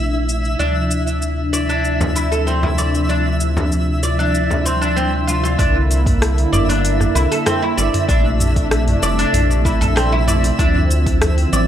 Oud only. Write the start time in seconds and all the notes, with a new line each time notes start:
0.59 D4
1.53 D5
1.69 D4
2.16 E4
2.32 A4
2.47 C4
2.63 E4
2.78 D5
3.09 D4
4.03 D5
4.19 D4
4.66 C4
4.82 D4
4.97 C4
5.27 F4
5.44 F4
5.59 D4
6.53 D5
6.69 D4
7.15 E4
7.32 A4
7.46 C4
7.62 E4
7.77 D5
8.09 D4
9.03 D5
9.19 D4
9.65 E4
9.81 A4
9.96 C4
10.12 E4
10.28 D5
10.59 D4
11.53 D5